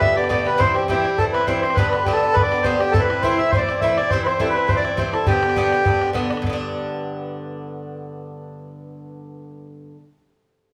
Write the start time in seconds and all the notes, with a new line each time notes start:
Already playing: G4 A4 B4 D5
0.00 A2 D3 B3 G4 E5, bodhran
0.15 D3 B3 G4 D5, bodhran
0.24 bodhran
0.29 A2 D3 B3 G4 D5, bodhran
0.45 D3 B3 G4 B4, bodhran
0.58 G2 E3 C4 E4 C5, bodhran
0.74 E3 C4 E4 G4, bodhran
0.83 bodhran
0.88 G2 E3 C4 E4 G4, bodhran
1.04 E3 C4 E4, bodhran
1.18 G2 E3 C4 E4 A4, bodhran
1.33 C4 E4 B4, bodhran
1.37 E3, bodhran
1.46 G2 E3 C4 E4 C5, bodhran
1.62 C4 E4 C5, bodhran
1.66 E3
1.70 bodhran
1.74 G2 D3 B3 B4, bodhran
1.79 D4 B4
1.91 B3 D4 B4, bodhran
1.96 D3
2.04 G2 D3 B3 D4 G4, bodhran
2.12 A4
2.23 D3 B3 D4
2.33 G2 D3 B4, bodhran
2.37 B3 D4 B4
2.42 D5
2.51 D3 B3 D4, bodhran
2.58 bodhran
2.63 G2 D3 B3 D4 C5, bodhran
2.79 B3 D4 G4, bodhran
2.83 D3
2.92 A2 E3 C4 A4, bodhran
2.96 E4 B4
3.01 B4
3.10 E3 C4 E4, bodhran
3.21 A2 E3 C4 E4 C5, bodhran
3.38 E3 C4 E4 E5
3.50 A2 E3 C5, bodhran
3.55 C4 E4 D5
3.69 E3 C4 E4, bodhran
3.75 bodhran
3.80 A2 E3 C4 E4 E5, bodhran
3.97 C4 E4 D5, bodhran
4.01 E3
4.10 G2 E3 C4 E4 C5, bodhran
4.24 E4 B4 C5, bodhran
4.28 E3 C4
4.39 G2 E3 C4 E4 A4, bodhran
4.49 B4
4.54 E3 C4 E4
4.67 G2 E3 C4 E4 C5, bodhran
4.76 D5
4.84 E3 C4 E4, bodhran
4.91 bodhran
4.97 G2 E3 C4 E4 C5, bodhran
5.13 E3 C4 E4 A4, bodhran
5.26 G2 D3 B3 D4 G4, bodhran
5.42 D3 B3 D4, bodhran
5.50 bodhran
5.56 G2 D3 B3 D4, bodhran
5.73 D3 B3 D4, bodhran
5.85 G2 D3 B3 D4, bodhran
6.01 D3 B3 D4, bodhran
6.08 bodhran
6.13 G2 D3 B3 D4, bodhran
6.30 D3 B3 D4, bodhran
6.37 bodhran
6.42 G2, bodhran
6.47 D3 B3
6.53 D4